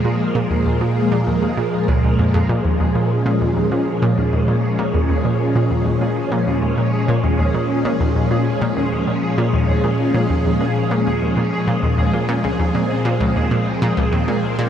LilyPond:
<<
  \new Staff \with { instrumentName = "Synth texture" } { \time 4/4 \key bes \minor \tempo 4 = 98 aes'1 | aes'1~ | aes'1~ | aes'1~ |
aes'1~ | aes'1 | }
  \new Staff \with { instrumentName = "String machine" } { \time 4/4 \key bes \minor << { bes1 | des'1~ | des'1~ | des'1~ |
des'1 | c'1 | } \\ { <bes, f aes>1~ | <bes, f aes>1~ | <bes, f aes>1~ | <bes, f aes>1~ |
<bes, f aes>1~ | <bes, f aes>1 | } >> }
  \new Staff \with { instrumentName = "Synth arpeggio sound" } { \clef bass \time 4/4 \key bes \minor bes,16 r16 bes,16 ees,16 ees,16 bes,16 r16 bes,16 ees,16 ees,16 bes,16 r16 des,16 des,16 f,16 f,16 | bes,16 ees,16 ees,16 bes,16 r16 bes,16 ees,16 ees,16 bes,16 r16 bes,16 ees,16 ees,16 bes,16 r16 bes,16 | ees,16 ees,16 bes,16 r16 bes,16 ees,16 ees,16 bes,16 r16 bes,16 ees,16 ees,16 bes,16 r16 bes,16 ees,16 | ees,16 bes,16 r16 bes,16 ees,16 ees,16 bes,16 r16 bes,16 ees,16 ees,16 bes,16 r16 bes,16 ees,16 ees,16 |
bes,16 r16 bes,16 ees,16 ees,16 bes,16 r16 bes,16 ees,16 ees,16 bes,16 r16 bes,16 ees,16 ees,16 bes,16 | bes,16 des,16 ees,16 bes,16 r16 bes,16 des,16 ees,16 bes,16 r16 bes,16 des,16 ees,16 bes,16 r16 bes,16 | }
>>